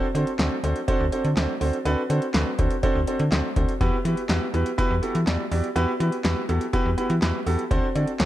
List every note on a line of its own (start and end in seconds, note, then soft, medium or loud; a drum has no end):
0.15 0.25 D3 loud
0.15 0.30 C4 medium
0.15 0.30 D4 medium
0.15 0.30 F#4 medium
0.15 0.30 A4 medium
0.15 0.30 C5 medium
0.15 closed hi-hat medium
0.27 closed hi-hat medium
0.39 0.49 D2 loud
0.39 0.54 C4 medium
0.39 0.54 D4 medium
0.39 0.54 F#4 medium
0.39 0.54 A4 medium
0.39 0.54 C5 loud
0.39 snare loud
0.39 clap loud
0.39 closed hi-hat medium
0.64 0.74 D2 loud
0.64 0.78 C4 medium
0.64 0.78 D4 medium
0.64 0.79 F#4 medium
0.64 0.78 A4 medium
0.64 0.78 C5 medium
0.64 closed hi-hat medium
0.76 closed hi-hat medium
0.88 1.03 C4 loud
0.88 1.03 D4 loud
0.88 1.03 F#4 loud
0.88 1.03 A4 loud
0.88 1.03 C5 loud
0.88 kick loud
0.88 closed hi-hat medium
1.00 1.10 D2 loud
1.12 1.27 C4 medium
1.12 1.27 D4 medium
1.12 1.27 F#4 medium
1.12 1.27 A4 medium
1.12 1.27 C5 loud
1.12 closed hi-hat medium
1.25 1.35 D3 medium
1.25 closed hi-hat medium
1.37 1.47 D2 loud
1.37 1.52 C4 medium
1.37 1.52 D4 medium
1.37 1.52 F#4 medium
1.37 1.52 A4 medium
1.37 1.52 C5 loud
1.37 snare loud
1.37 clap medium
1.37 closed hi-hat medium
1.61 1.71 D2 medium
1.61 1.76 C4 medium
1.61 1.76 D4 medium
1.61 1.76 F#4 medium
1.61 1.76 A4 medium
1.61 1.76 C5 loud
1.61 open hi-hat medium
1.73 closed hi-hat medium
1.85 1.96 D2 loud
1.85 2.00 C4 loud
1.85 2.00 D4 loud
1.85 2.00 F#4 loud
1.85 2.00 A4 loud
1.85 2.00 B4 loud
1.85 closed hi-hat medium
2.10 2.20 D3 loud
2.10 2.25 C4 medium
2.10 2.25 D4 medium
2.10 2.25 F#4 medium
2.10 2.25 A4 medium
2.10 2.25 C5 loud
2.10 closed hi-hat medium
2.22 closed hi-hat medium
2.34 2.44 D2 loud
2.34 2.49 C4 medium
2.34 2.49 D4 medium
2.34 2.49 F#4 medium
2.34 2.49 A4 medium
2.34 2.49 B4 loud
2.34 snare loud
2.34 clap loud
2.34 closed hi-hat medium
2.59 2.69 D2 medium
2.59 2.74 C4 medium
2.59 2.74 D4 medium
2.59 2.74 F#4 medium
2.59 2.74 A4 medium
2.59 2.74 C5 medium
2.59 kick medium
2.59 closed hi-hat medium
2.70 closed hi-hat medium
2.83 2.98 C4 loud
2.83 2.98 D4 loud
2.83 2.98 F#4 loud
2.83 2.98 A4 loud
2.83 2.98 C5 loud
2.83 kick medium
2.83 closed hi-hat medium
2.95 3.05 D2 medium
3.07 3.22 C4 medium
3.07 3.22 D4 medium
3.07 3.22 F#4 medium
3.07 3.22 A4 medium
3.07 3.22 C5 medium
3.07 closed hi-hat medium
3.19 3.30 D3 loud
3.19 closed hi-hat medium
3.32 3.42 D2 loud
3.32 3.47 C4 medium
3.32 3.47 D4 medium
3.32 3.47 F#4 medium
3.32 3.47 A4 medium
3.32 3.47 C5 medium
3.32 snare loud
3.32 clap medium
3.32 closed hi-hat medium
3.56 3.67 D2 loud
3.56 3.71 C4 medium
3.56 3.71 D4 medium
3.56 3.71 F#4 medium
3.56 3.71 A4 medium
3.56 3.71 C5 loud
3.56 kick loud
3.56 closed hi-hat medium
3.69 closed hi-hat medium
3.81 3.91 E2 loud
3.81 3.96 B3 loud
3.81 3.96 E4 loud
3.81 3.96 F#4 loud
3.81 3.96 G4 loud
3.81 3.96 B4 loud
3.81 kick loud
3.81 closed hi-hat medium
4.05 4.15 E3 loud
4.05 4.20 B3 medium
4.05 4.20 E4 medium
4.05 4.20 F#4 medium
4.05 4.20 G4 medium
4.05 4.20 B4 medium
4.05 closed hi-hat medium
4.17 closed hi-hat medium
4.29 4.40 E2 loud
4.29 4.44 B3 medium
4.29 4.44 E4 medium
4.29 4.44 F#4 medium
4.29 4.44 G4 medium
4.29 4.44 B4 loud
4.29 snare loud
4.29 clap loud
4.29 closed hi-hat medium
4.54 4.64 E2 loud
4.54 4.69 B3 medium
4.54 4.69 E4 medium
4.54 4.69 F#4 medium
4.54 4.69 G4 medium
4.54 4.69 B4 medium
4.54 closed hi-hat medium
4.66 closed hi-hat medium
4.78 4.93 B3 loud
4.78 4.93 E4 loud
4.78 4.93 F#4 loud
4.78 4.93 G4 loud
4.78 4.93 B4 loud
4.78 kick medium
4.78 closed hi-hat medium
4.91 5.01 E2 medium
5.02 5.17 B3 medium
5.02 5.17 E4 medium
5.02 5.17 F#4 medium
5.02 5.17 G4 medium
5.02 5.17 A4 medium
5.02 closed hi-hat medium
5.15 5.25 E3 loud
5.15 closed hi-hat medium
5.27 5.37 E2 loud
5.27 5.42 B3 medium
5.27 5.42 E4 medium
5.27 5.42 F#4 medium
5.27 5.42 G4 medium
5.27 5.42 D5 medium
5.27 snare loud
5.27 clap medium
5.27 closed hi-hat medium
5.51 5.62 E2 loud
5.51 5.66 B3 medium
5.51 5.66 E4 medium
5.51 5.66 F#4 medium
5.51 5.66 G4 medium
5.51 5.66 D5 medium
5.51 open hi-hat medium
5.64 closed hi-hat medium
5.76 5.86 E2 loud
5.76 5.91 B3 loud
5.76 5.91 E4 loud
5.76 5.90 F#4 loud
5.76 5.90 G4 loud
5.76 5.91 B4 loud
5.76 closed hi-hat medium
6.00 6.10 E3 loud
6.00 6.15 B3 medium
6.00 6.15 E4 medium
6.00 6.15 F#4 medium
6.00 6.15 G4 medium
6.00 6.15 B4 medium
6.00 closed hi-hat medium
6.12 closed hi-hat medium
6.24 6.35 E2 loud
6.24 6.39 B3 medium
6.24 6.39 E4 medium
6.24 6.39 F#4 medium
6.24 6.39 G4 medium
6.24 6.39 B4 loud
6.24 snare loud
6.24 clap loud
6.24 closed hi-hat medium
6.49 6.59 E2 loud
6.49 6.64 B3 medium
6.49 6.64 E4 medium
6.49 6.64 F#4 medium
6.49 6.64 G4 medium
6.49 6.64 A4 medium
6.49 closed hi-hat medium
6.61 closed hi-hat medium
6.73 6.88 B3 loud
6.73 6.88 E4 loud
6.73 6.88 F#4 loud
6.73 6.88 G4 loud
6.73 6.88 B4 loud
6.73 kick medium
6.73 closed hi-hat medium
6.85 6.96 E2 loud
6.98 7.13 B3 medium
6.98 7.13 E4 medium
6.98 7.13 F#4 medium
6.98 7.12 G4 medium
6.98 7.13 B4 loud
6.98 closed hi-hat medium
7.10 7.20 E3 loud
7.10 closed hi-hat soft
7.22 7.32 E2 loud
7.22 7.37 B3 medium
7.22 7.37 E4 medium
7.22 7.37 F#4 medium
7.22 7.37 G4 medium
7.22 7.37 B4 loud
7.22 snare loud
7.22 clap medium
7.22 closed hi-hat medium
7.46 7.57 E2 loud
7.46 7.61 B3 medium
7.46 7.61 E4 medium
7.46 7.61 F#4 medium
7.46 7.61 G4 medium
7.46 7.61 A4 loud
7.46 open hi-hat medium
7.59 closed hi-hat medium
7.71 7.81 D2 loud
7.71 7.86 C4 loud
7.71 7.86 D4 loud
7.71 7.86 F#4 loud
7.71 7.86 A4 loud
7.71 7.86 C5 loud
7.71 kick loud
7.71 closed hi-hat medium
7.95 8.06 D3 loud
7.95 8.10 C4 medium
7.95 8.10 D4 medium
7.95 8.10 F#4 medium
7.95 8.10 A4 medium
7.95 8.10 D5 medium
7.95 closed hi-hat medium
8.07 closed hi-hat medium
8.20 8.25 D2 loud
8.20 8.25 C4 medium
8.20 8.25 D4 medium
8.20 8.25 F#4 medium
8.20 8.25 A4 medium
8.20 8.25 C5 loud
8.20 snare loud
8.20 clap loud
8.20 closed hi-hat medium